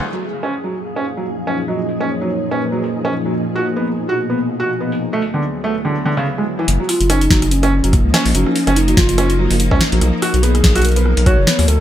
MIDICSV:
0, 0, Header, 1, 6, 480
1, 0, Start_track
1, 0, Key_signature, 6, "major"
1, 0, Tempo, 416667
1, 16, Time_signature, 4, 2, 24, 8
1, 13596, End_track
2, 0, Start_track
2, 0, Title_t, "Soft synth lead"
2, 0, Program_c, 0, 80
2, 977, Note_on_c, 0, 77, 117
2, 1890, Note_off_c, 0, 77, 0
2, 1935, Note_on_c, 0, 75, 104
2, 2345, Note_off_c, 0, 75, 0
2, 2345, Note_on_c, 0, 75, 67
2, 2415, Note_on_c, 0, 73, 92
2, 2433, Note_off_c, 0, 75, 0
2, 2896, Note_on_c, 0, 71, 85
2, 2914, Note_off_c, 0, 73, 0
2, 3616, Note_off_c, 0, 71, 0
2, 7936, Note_on_c, 0, 65, 105
2, 8176, Note_on_c, 0, 63, 108
2, 8193, Note_off_c, 0, 65, 0
2, 8649, Note_off_c, 0, 63, 0
2, 8655, Note_on_c, 0, 61, 109
2, 9137, Note_on_c, 0, 58, 93
2, 9154, Note_off_c, 0, 61, 0
2, 9616, Note_on_c, 0, 61, 107
2, 9633, Note_off_c, 0, 58, 0
2, 10089, Note_off_c, 0, 61, 0
2, 10096, Note_on_c, 0, 63, 98
2, 10319, Note_off_c, 0, 63, 0
2, 10337, Note_on_c, 0, 65, 99
2, 11010, Note_off_c, 0, 65, 0
2, 11778, Note_on_c, 0, 66, 86
2, 12000, Note_off_c, 0, 66, 0
2, 12017, Note_on_c, 0, 68, 97
2, 12463, Note_off_c, 0, 68, 0
2, 12496, Note_on_c, 0, 70, 112
2, 12975, Note_on_c, 0, 73, 112
2, 12992, Note_off_c, 0, 70, 0
2, 13449, Note_off_c, 0, 73, 0
2, 13456, Note_on_c, 0, 69, 112
2, 13596, Note_off_c, 0, 69, 0
2, 13596, End_track
3, 0, Start_track
3, 0, Title_t, "Felt piano"
3, 0, Program_c, 1, 0
3, 150, Note_on_c, 1, 54, 71
3, 238, Note_off_c, 1, 54, 0
3, 496, Note_on_c, 1, 61, 91
3, 607, Note_off_c, 1, 61, 0
3, 736, Note_on_c, 1, 54, 68
3, 847, Note_off_c, 1, 54, 0
3, 1110, Note_on_c, 1, 61, 93
3, 1197, Note_off_c, 1, 61, 0
3, 1350, Note_on_c, 1, 54, 72
3, 1437, Note_off_c, 1, 54, 0
3, 1696, Note_on_c, 1, 61, 91
3, 1807, Note_off_c, 1, 61, 0
3, 1936, Note_on_c, 1, 54, 77
3, 2047, Note_off_c, 1, 54, 0
3, 2310, Note_on_c, 1, 61, 92
3, 2397, Note_off_c, 1, 61, 0
3, 2550, Note_on_c, 1, 54, 69
3, 2638, Note_off_c, 1, 54, 0
3, 2896, Note_on_c, 1, 61, 93
3, 3007, Note_off_c, 1, 61, 0
3, 3136, Note_on_c, 1, 54, 74
3, 3247, Note_off_c, 1, 54, 0
3, 3510, Note_on_c, 1, 61, 96
3, 3597, Note_off_c, 1, 61, 0
3, 3750, Note_on_c, 1, 54, 72
3, 3837, Note_off_c, 1, 54, 0
3, 4096, Note_on_c, 1, 66, 92
3, 4207, Note_off_c, 1, 66, 0
3, 4337, Note_on_c, 1, 59, 77
3, 4447, Note_off_c, 1, 59, 0
3, 4711, Note_on_c, 1, 66, 96
3, 4798, Note_off_c, 1, 66, 0
3, 4950, Note_on_c, 1, 59, 71
3, 5038, Note_off_c, 1, 59, 0
3, 5296, Note_on_c, 1, 66, 95
3, 5407, Note_off_c, 1, 66, 0
3, 5536, Note_on_c, 1, 59, 69
3, 5647, Note_off_c, 1, 59, 0
3, 5910, Note_on_c, 1, 57, 95
3, 5997, Note_off_c, 1, 57, 0
3, 6151, Note_on_c, 1, 50, 71
3, 6238, Note_off_c, 1, 50, 0
3, 6496, Note_on_c, 1, 57, 96
3, 6607, Note_off_c, 1, 57, 0
3, 6737, Note_on_c, 1, 50, 78
3, 6847, Note_off_c, 1, 50, 0
3, 6976, Note_on_c, 1, 50, 100
3, 7042, Note_off_c, 1, 50, 0
3, 7110, Note_on_c, 1, 49, 97
3, 7197, Note_off_c, 1, 49, 0
3, 7350, Note_on_c, 1, 56, 74
3, 7403, Note_off_c, 1, 56, 0
3, 7590, Note_on_c, 1, 52, 97
3, 7643, Note_off_c, 1, 52, 0
3, 7831, Note_on_c, 1, 54, 75
3, 7918, Note_off_c, 1, 54, 0
3, 8176, Note_on_c, 1, 61, 102
3, 8287, Note_off_c, 1, 61, 0
3, 8416, Note_on_c, 1, 54, 74
3, 8527, Note_off_c, 1, 54, 0
3, 8791, Note_on_c, 1, 61, 104
3, 8878, Note_off_c, 1, 61, 0
3, 9031, Note_on_c, 1, 54, 79
3, 9118, Note_off_c, 1, 54, 0
3, 9376, Note_on_c, 1, 61, 101
3, 9487, Note_off_c, 1, 61, 0
3, 9616, Note_on_c, 1, 54, 83
3, 9727, Note_off_c, 1, 54, 0
3, 9990, Note_on_c, 1, 61, 101
3, 10078, Note_off_c, 1, 61, 0
3, 10231, Note_on_c, 1, 54, 75
3, 10318, Note_off_c, 1, 54, 0
3, 10576, Note_on_c, 1, 61, 102
3, 10687, Note_off_c, 1, 61, 0
3, 10816, Note_on_c, 1, 54, 80
3, 10927, Note_off_c, 1, 54, 0
3, 11191, Note_on_c, 1, 61, 102
3, 11278, Note_off_c, 1, 61, 0
3, 11431, Note_on_c, 1, 54, 77
3, 11518, Note_off_c, 1, 54, 0
3, 11776, Note_on_c, 1, 66, 104
3, 11887, Note_off_c, 1, 66, 0
3, 12016, Note_on_c, 1, 59, 84
3, 12127, Note_off_c, 1, 59, 0
3, 12391, Note_on_c, 1, 66, 105
3, 12478, Note_off_c, 1, 66, 0
3, 12631, Note_on_c, 1, 59, 76
3, 12718, Note_off_c, 1, 59, 0
3, 12976, Note_on_c, 1, 66, 102
3, 13087, Note_off_c, 1, 66, 0
3, 13216, Note_on_c, 1, 59, 77
3, 13327, Note_off_c, 1, 59, 0
3, 13596, End_track
4, 0, Start_track
4, 0, Title_t, "String machine"
4, 0, Program_c, 2, 50
4, 0, Note_on_c, 2, 68, 97
4, 15, Note_on_c, 2, 42, 82
4, 119, Note_on_c, 2, 53, 91
4, 177, Note_on_c, 2, 46, 93
4, 245, Note_on_c, 2, 63, 81
4, 3855, Note_off_c, 2, 42, 0
4, 3855, Note_on_c, 2, 47, 92
4, 5775, Note_off_c, 2, 46, 0
4, 5775, Note_off_c, 2, 47, 0
4, 5775, Note_off_c, 2, 53, 0
4, 5775, Note_off_c, 2, 63, 0
4, 5776, Note_on_c, 2, 38, 75
4, 5846, Note_on_c, 2, 54, 83
4, 5876, Note_on_c, 2, 59, 95
4, 6287, Note_on_c, 2, 64, 84
4, 7695, Note_off_c, 2, 54, 0
4, 7695, Note_off_c, 2, 59, 0
4, 7695, Note_off_c, 2, 64, 0
4, 7695, Note_on_c, 2, 53, 80
4, 7696, Note_off_c, 2, 38, 0
4, 7856, Note_on_c, 2, 63, 80
4, 7879, Note_on_c, 2, 58, 84
4, 13455, Note_off_c, 2, 53, 0
4, 13455, Note_off_c, 2, 58, 0
4, 13455, Note_off_c, 2, 63, 0
4, 13455, Note_on_c, 2, 54, 91
4, 13456, Note_off_c, 2, 68, 0
4, 13557, Note_on_c, 2, 59, 80
4, 13596, Note_off_c, 2, 54, 0
4, 13596, Note_off_c, 2, 59, 0
4, 13596, End_track
5, 0, Start_track
5, 0, Title_t, "Analog synth bass"
5, 0, Program_c, 3, 38
5, 7695, Note_on_c, 3, 30, 103
5, 7810, Note_off_c, 3, 30, 0
5, 8070, Note_on_c, 3, 30, 90
5, 8390, Note_off_c, 3, 30, 0
5, 8415, Note_on_c, 3, 30, 103
5, 8997, Note_off_c, 3, 30, 0
5, 9030, Note_on_c, 3, 30, 106
5, 9263, Note_off_c, 3, 30, 0
5, 9270, Note_on_c, 3, 37, 83
5, 9360, Note_off_c, 3, 37, 0
5, 9510, Note_on_c, 3, 34, 98
5, 9600, Note_off_c, 3, 34, 0
5, 9615, Note_on_c, 3, 30, 106
5, 9730, Note_off_c, 3, 30, 0
5, 9990, Note_on_c, 3, 30, 89
5, 10310, Note_off_c, 3, 30, 0
5, 10336, Note_on_c, 3, 30, 105
5, 10917, Note_off_c, 3, 30, 0
5, 10950, Note_on_c, 3, 30, 106
5, 11183, Note_off_c, 3, 30, 0
5, 11190, Note_on_c, 3, 37, 87
5, 11280, Note_off_c, 3, 37, 0
5, 11431, Note_on_c, 3, 34, 94
5, 11520, Note_off_c, 3, 34, 0
5, 11535, Note_on_c, 3, 35, 104
5, 11650, Note_off_c, 3, 35, 0
5, 11910, Note_on_c, 3, 35, 91
5, 12230, Note_off_c, 3, 35, 0
5, 12255, Note_on_c, 3, 35, 103
5, 12837, Note_off_c, 3, 35, 0
5, 12869, Note_on_c, 3, 35, 102
5, 13103, Note_off_c, 3, 35, 0
5, 13110, Note_on_c, 3, 30, 84
5, 13199, Note_off_c, 3, 30, 0
5, 13350, Note_on_c, 3, 39, 97
5, 13440, Note_off_c, 3, 39, 0
5, 13456, Note_on_c, 3, 38, 105
5, 13570, Note_off_c, 3, 38, 0
5, 13596, End_track
6, 0, Start_track
6, 0, Title_t, "Drums"
6, 256, Note_on_c, 9, 46, 73
6, 371, Note_off_c, 9, 46, 0
6, 1830, Note_on_c, 9, 46, 72
6, 1945, Note_off_c, 9, 46, 0
6, 2175, Note_on_c, 9, 46, 72
6, 2291, Note_off_c, 9, 46, 0
6, 3270, Note_on_c, 9, 46, 72
6, 3385, Note_off_c, 9, 46, 0
6, 4096, Note_on_c, 9, 46, 72
6, 4211, Note_off_c, 9, 46, 0
6, 5670, Note_on_c, 9, 46, 73
6, 5786, Note_off_c, 9, 46, 0
6, 6016, Note_on_c, 9, 46, 75
6, 6131, Note_off_c, 9, 46, 0
6, 7110, Note_on_c, 9, 46, 73
6, 7225, Note_off_c, 9, 46, 0
6, 7696, Note_on_c, 9, 42, 70
6, 7811, Note_off_c, 9, 42, 0
6, 7936, Note_on_c, 9, 37, 56
6, 7936, Note_on_c, 9, 46, 80
6, 8051, Note_off_c, 9, 37, 0
6, 8051, Note_off_c, 9, 46, 0
6, 8070, Note_on_c, 9, 42, 55
6, 8176, Note_off_c, 9, 42, 0
6, 8176, Note_on_c, 9, 37, 81
6, 8176, Note_on_c, 9, 42, 67
6, 8291, Note_off_c, 9, 37, 0
6, 8291, Note_off_c, 9, 42, 0
6, 8311, Note_on_c, 9, 42, 39
6, 8415, Note_on_c, 9, 36, 120
6, 8416, Note_on_c, 9, 38, 120
6, 8426, Note_off_c, 9, 42, 0
6, 8531, Note_off_c, 9, 36, 0
6, 8531, Note_off_c, 9, 38, 0
6, 8550, Note_on_c, 9, 37, 56
6, 8550, Note_on_c, 9, 42, 57
6, 8656, Note_off_c, 9, 42, 0
6, 8656, Note_on_c, 9, 42, 68
6, 8666, Note_off_c, 9, 37, 0
6, 8771, Note_off_c, 9, 42, 0
6, 8790, Note_on_c, 9, 37, 84
6, 8790, Note_on_c, 9, 42, 38
6, 8906, Note_off_c, 9, 37, 0
6, 8906, Note_off_c, 9, 42, 0
6, 9031, Note_on_c, 9, 42, 55
6, 9135, Note_on_c, 9, 36, 105
6, 9136, Note_off_c, 9, 42, 0
6, 9136, Note_on_c, 9, 37, 55
6, 9136, Note_on_c, 9, 42, 68
6, 9251, Note_off_c, 9, 36, 0
6, 9251, Note_off_c, 9, 37, 0
6, 9251, Note_off_c, 9, 42, 0
6, 9376, Note_on_c, 9, 37, 81
6, 9376, Note_on_c, 9, 38, 117
6, 9491, Note_off_c, 9, 37, 0
6, 9491, Note_off_c, 9, 38, 0
6, 9510, Note_on_c, 9, 46, 81
6, 9616, Note_on_c, 9, 42, 70
6, 9625, Note_off_c, 9, 46, 0
6, 9731, Note_off_c, 9, 42, 0
6, 9751, Note_on_c, 9, 37, 55
6, 9856, Note_on_c, 9, 46, 77
6, 9866, Note_off_c, 9, 37, 0
6, 9971, Note_off_c, 9, 46, 0
6, 9990, Note_on_c, 9, 37, 79
6, 9990, Note_on_c, 9, 42, 55
6, 10096, Note_off_c, 9, 42, 0
6, 10096, Note_on_c, 9, 42, 68
6, 10106, Note_off_c, 9, 37, 0
6, 10212, Note_off_c, 9, 42, 0
6, 10230, Note_on_c, 9, 42, 39
6, 10336, Note_on_c, 9, 36, 123
6, 10336, Note_on_c, 9, 37, 55
6, 10336, Note_on_c, 9, 38, 124
6, 10345, Note_off_c, 9, 42, 0
6, 10451, Note_off_c, 9, 36, 0
6, 10451, Note_off_c, 9, 37, 0
6, 10451, Note_off_c, 9, 38, 0
6, 10470, Note_on_c, 9, 42, 58
6, 10576, Note_off_c, 9, 42, 0
6, 10576, Note_on_c, 9, 37, 80
6, 10576, Note_on_c, 9, 42, 69
6, 10691, Note_off_c, 9, 37, 0
6, 10691, Note_off_c, 9, 42, 0
6, 10710, Note_on_c, 9, 42, 39
6, 10825, Note_off_c, 9, 42, 0
6, 10950, Note_on_c, 9, 46, 78
6, 11056, Note_on_c, 9, 42, 69
6, 11066, Note_off_c, 9, 46, 0
6, 11172, Note_off_c, 9, 42, 0
6, 11190, Note_on_c, 9, 36, 86
6, 11191, Note_on_c, 9, 37, 82
6, 11297, Note_on_c, 9, 38, 121
6, 11305, Note_off_c, 9, 36, 0
6, 11306, Note_off_c, 9, 37, 0
6, 11412, Note_off_c, 9, 38, 0
6, 11431, Note_on_c, 9, 42, 56
6, 11537, Note_off_c, 9, 42, 0
6, 11537, Note_on_c, 9, 37, 53
6, 11537, Note_on_c, 9, 42, 70
6, 11652, Note_off_c, 9, 37, 0
6, 11652, Note_off_c, 9, 42, 0
6, 11777, Note_on_c, 9, 37, 80
6, 11777, Note_on_c, 9, 46, 77
6, 11892, Note_off_c, 9, 37, 0
6, 11892, Note_off_c, 9, 46, 0
6, 11911, Note_on_c, 9, 42, 53
6, 12017, Note_off_c, 9, 42, 0
6, 12017, Note_on_c, 9, 42, 68
6, 12132, Note_off_c, 9, 42, 0
6, 12151, Note_on_c, 9, 37, 53
6, 12151, Note_on_c, 9, 42, 40
6, 12255, Note_on_c, 9, 36, 127
6, 12256, Note_on_c, 9, 38, 124
6, 12266, Note_off_c, 9, 37, 0
6, 12266, Note_off_c, 9, 42, 0
6, 12371, Note_off_c, 9, 36, 0
6, 12371, Note_off_c, 9, 38, 0
6, 12390, Note_on_c, 9, 37, 79
6, 12390, Note_on_c, 9, 42, 53
6, 12415, Note_off_c, 9, 42, 0
6, 12415, Note_on_c, 9, 42, 42
6, 12460, Note_off_c, 9, 42, 0
6, 12460, Note_on_c, 9, 42, 35
6, 12495, Note_off_c, 9, 42, 0
6, 12495, Note_on_c, 9, 42, 67
6, 12505, Note_off_c, 9, 37, 0
6, 12540, Note_off_c, 9, 42, 0
6, 12540, Note_on_c, 9, 42, 23
6, 12576, Note_off_c, 9, 42, 0
6, 12576, Note_on_c, 9, 42, 19
6, 12630, Note_off_c, 9, 42, 0
6, 12630, Note_on_c, 9, 42, 37
6, 12736, Note_on_c, 9, 37, 51
6, 12745, Note_off_c, 9, 42, 0
6, 12851, Note_off_c, 9, 37, 0
6, 12870, Note_on_c, 9, 42, 55
6, 12975, Note_off_c, 9, 42, 0
6, 12975, Note_on_c, 9, 36, 109
6, 12975, Note_on_c, 9, 37, 76
6, 12975, Note_on_c, 9, 42, 67
6, 13090, Note_off_c, 9, 36, 0
6, 13091, Note_off_c, 9, 37, 0
6, 13091, Note_off_c, 9, 42, 0
6, 13216, Note_on_c, 9, 38, 121
6, 13331, Note_off_c, 9, 38, 0
6, 13350, Note_on_c, 9, 37, 52
6, 13350, Note_on_c, 9, 46, 76
6, 13456, Note_on_c, 9, 42, 67
6, 13465, Note_off_c, 9, 37, 0
6, 13465, Note_off_c, 9, 46, 0
6, 13571, Note_off_c, 9, 42, 0
6, 13596, End_track
0, 0, End_of_file